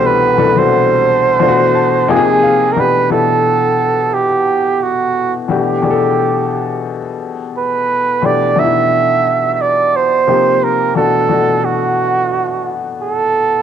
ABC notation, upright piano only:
X:1
M:4/4
L:1/16
Q:"Swing 16ths" 1/4=88
K:G
V:1 name="Upright piano"
z8 z2 a2 g2 =f2 | z16 | z16 | z16 |
z16 |]
V:2 name="Upright piano"
[C,,B,,E,A,DG] z [C,,B,,E,A,DA] [C,,B,,E,A,DF]4- [C,,B,,E,A,DF] [B,,E,A,D=F^F]3 z [C,=F,^A,_E=F_A]3 z | [B,,E,A,DG]2 [B,,E,A,DE]6- [B,,E,A,DE] z6 z | [B,,E,A,DG]2 [B,,E,A,D^GA]6- [B,,E,A,DGA] z6 z | [B,,E,A,DG]2 [B,,E,A,D^DE]6- [B,,E,A,=D^DE] z3 [C,^E,^A,DG]3 z |
[B,,E,A,DF]2 [B,,E,A,DF]6- [B,,E,A,DF] z6 z |]